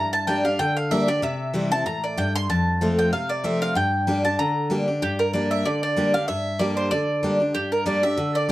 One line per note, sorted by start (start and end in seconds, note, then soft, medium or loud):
0.00 0.56 G2 medium
0.00 0.12 A#5 loud
0.13 0.27 A5 loud
0.27 0.44 G3 medium
0.27 0.44 A#3 medium
0.27 0.45 D4 medium
0.27 0.43 G4 medium
0.27 0.44 G5 medium
0.44 0.59 D4 medium
0.44 0.58 G4 medium
0.44 0.59 F5 medium
0.59 1.20 D3 medium
0.59 0.76 G5 loud
0.77 0.91 F5 medium
0.91 1.08 G3 medium
0.91 1.08 A#3 medium
0.91 1.08 D4 medium
0.91 1.06 G4 medium
0.91 1.08 E5 medium
1.08 1.22 D4 soft
1.08 1.22 G4 medium
1.08 1.22 D5 loud
1.22 1.83 C3 loud
1.22 1.68 E5 medium
1.54 1.70 E3 medium
1.54 1.71 G3 medium
1.54 1.71 C4 medium
1.54 1.70 E4 medium
1.71 1.86 C4 medium
1.71 1.85 E4 medium
1.71 1.85 A5 loud
1.86 2.16 A2 medium
1.86 2.03 A#5 loud
2.04 2.17 D5 medium
2.17 2.48 G2 medium
2.17 2.35 G5 loud
2.36 2.49 C6 loud
2.50 3.10 F2 medium
2.50 2.95 A5 medium
2.81 3.11 F3 medium
2.81 3.11 A3 medium
2.81 3.12 C4 medium
2.81 3.12 F4 loud
2.99 3.12 G5 medium
3.13 3.73 C3 loud
3.13 3.29 F5 medium
3.29 3.43 D5 medium
3.44 3.74 F3 medium
3.44 3.74 A3 medium
3.44 3.75 C4 loud
3.44 3.75 F4 medium
3.44 3.61 E5 medium
3.62 3.75 F5 loud
3.75 4.36 G2 medium
3.75 4.21 G5 medium
4.07 4.24 G3 medium
4.07 4.24 A#3 medium
4.07 4.24 D4 medium
4.07 4.24 G4 loud
4.25 4.39 D4 soft
4.25 4.38 G4 medium
4.25 4.38 A5 medium
4.39 4.99 D3 medium
4.39 4.68 A#5 medium
4.70 4.87 G3 medium
4.70 4.87 A#3 medium
4.70 4.87 D4 medium
4.70 4.86 G4 medium
4.88 5.02 D4 soft
4.88 5.01 G4 medium
5.02 5.62 G2 medium
5.02 5.20 G4 medium
5.19 5.33 A#4 medium
5.33 5.64 G3 medium
5.33 5.64 A#3 medium
5.33 5.64 D4 loud
5.33 5.64 G4 loud
5.33 5.51 D5 medium
5.51 5.66 E5 medium
5.65 6.26 D3 medium
5.65 5.82 D5 medium
5.83 6.12 D5 loud
5.97 6.13 G3 medium
5.97 6.13 A#3 medium
5.97 6.14 D4 medium
5.97 6.13 G4 medium
6.14 6.28 D4 soft
6.14 6.28 G4 medium
6.14 6.27 F5 loud
6.28 6.89 G2 medium
6.28 6.61 E5 loud
6.59 6.90 G3 medium
6.59 6.90 A#3 medium
6.59 6.90 D4 medium
6.59 6.91 G4 medium
6.59 6.76 D5 medium
6.77 6.91 C5 medium
6.91 7.52 D3 medium
6.91 7.36 D5 loud
7.23 7.39 G3 medium
7.23 7.40 A#3 medium
7.23 7.40 D4 loud
7.23 7.39 G4 loud
7.40 7.55 D4 soft
7.40 7.54 G4 medium
7.55 8.15 G2 medium
7.55 7.70 G4 medium
7.72 7.85 A#4 medium
7.86 8.02 G3 medium
7.86 8.02 A#3 medium
7.86 8.03 D4 medium
7.86 8.02 G4 loud
7.86 8.02 D5 medium
8.03 8.17 D4 soft
8.03 8.17 G4 medium
8.03 8.36 E5 loud
8.17 8.52 D3 medium
8.35 8.48 D5 medium
8.49 8.52 G3 medium